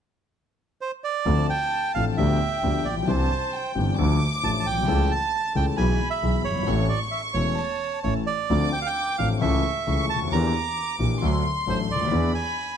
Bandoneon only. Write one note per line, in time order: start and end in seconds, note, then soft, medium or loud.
0.81 0.91 C5 medium
1.04 1.47 D5 medium
1.50 1.92 G5 medium
1.94 2.05 F5 medium
2.17 2.88 E5 medium
2.85 2.96 D5 medium
3.08 3.72 C5 medium
4.44 4.51 A5 medium
4.60 4.66 A5 medium
4.66 5.12 G5 medium
5.11 5.53 A5 medium
5.56 5.66 G5 medium
5.77 6.09 G#5 medium
6.10 6.42 E5 medium
6.44 6.87 C#5 medium
6.89 6.99 D5 medium
7.11 7.22 E5 medium
7.34 8.00 C#5 medium
8.03 8.14 C#5 medium
8.27 8.70 D5 medium
8.72 8.80 G5 medium
8.81 8.88 F5 medium
8.86 9.16 G5 medium
9.18 9.29 F5 medium
9.41 10.06 E5 medium
10.09 10.20 A5 medium
10.32 10.96 A#5 medium
11.69 11.79 C5 medium
11.91 12.32 D5 medium
12.35 12.76 G#5 medium